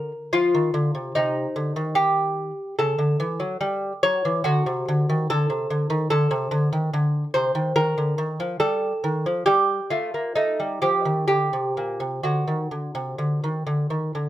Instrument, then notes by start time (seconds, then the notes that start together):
lute
Already playing: D3 A#4
0.33 F3 F4
0.55 D#3
0.74 D3
0.95 C3
1.15 C3 D#4
1.56 D3
1.76 D#3
1.95 G4
2.79 C#3 A4
2.98 D3
3.20 E3
3.40 F#3
3.61 G3
4.03 F#3 C#5
4.25 E3
4.44 D3 F#4
4.66 C3
4.88 D3
5.09 D#3
5.30 D3 A4
5.50 C3
5.70 D3
5.90 D#3
6.10 D3 A4
6.31 C3
6.51 D3
6.73 D#3
6.93 D3
7.34 C3 C5
7.55 D#3
7.76 D#3 A#4
7.98 D3
8.18 D#3
8.40 F3
8.60 G3 A4
9.04 D#3
9.26 F3
9.46 G3 G4
9.90 A3 F4
10.14 A#3
10.35 A3 D#4
10.60 G3
10.82 F3 G4
11.05 D#3
11.28 D3 G4
11.53 C3
11.77 A#2
12.00 C3
12.23 D3 F#4
12.48 D#3
12.71 D3
12.95 C3
13.18 D3
13.44 D#3
13.67 D3
13.90 D#3
14.15 D3